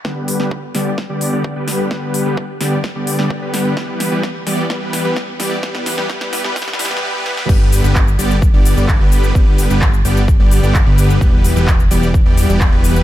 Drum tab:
CC |--------------------------------|--------------------------------|--------------------------------|--------------------------------|
HH |----o-------o-------o-------o---|----o-------o-------o-------o---|----o-------o-------o-------o---|----o-------o---o---o-----------|
SH |--------------------------------|--------------------------------|--------------------------------|--------------------------------|
CP |--------------------------------|--------------------------------|--------------------------------|--------------------------------|
SD |o-----o-----o---o-----------o---|o-----------o---o-----o-----o---|o---o---o---o---o---o---o---o---|o-o-o-o-o-o-o-o-oooooooo----o-o-|
BD |o-------o-------o-------o-------|o-------o-------o-------o-------|o-------o-------o-------o-------|o-------o-------o---------------|

CC |x-------------------------------|--------------------------------|--------------------------------|
HH |----o-------o-------o-------o---|----o-------o-------o-------o---|----o-------o-------o-------o---|
SH |x---x-x-x-x-x-x-x---x-x-x---x-x-|x---x-x-x-x-x-x-x---x-x-x---x-x-|x---x-x-x-x-x-x-x---x-x-x---x-x-|
CP |--------x---------------x-------|--------x---------------x-------|--------x---------------x-------|
SD |--------------------------------|--------------------------------|--------------------------------|
BD |o-------o-------o-------o-------|o-------o-------o-------o-------|o-------o-------o-------o-------|